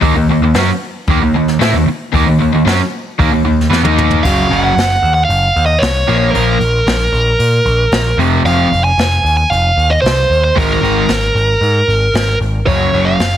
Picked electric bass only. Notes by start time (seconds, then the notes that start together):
0.02 D#2
0.16 D#2
0.29 D#2
0.42 D#2
0.55 F#2
1.08 D#2
1.20 D#2
1.34 D#2
1.59 A2
1.73 D#2
1.86 muted picked electric bass stroke
2.14 D#2
2.27 D#2
2.40 D#2
2.53 D#2
2.66 F#2
3.19 D#2
3.31 D#2
3.44 D#2
3.71 E2
3.83 D#2
4.25 F#1
4.51 F#1
4.77 F#1
5.03 D#2
5.29 F#1
5.56 D#2
5.82 C2
6.09 A#1
6.35 A#1
6.60 A#1
6.86 A#1
7.12 A#1
7.39 A#2
7.65 A#1
7.92 A#1
8.17 F1
8.44 F1
8.71 F1
8.98 F1
9.23 D#2
9.51 F1
9.76 D#2
10.03 C2
10.29 D#2
10.58 G#1
10.82 G#1
11.09 G#1
11.35 G#1
11.61 G#2
11.88 G#1
12.14 G#1
12.41 G#1
12.67 F#1
12.94 F#1
13.20 F#1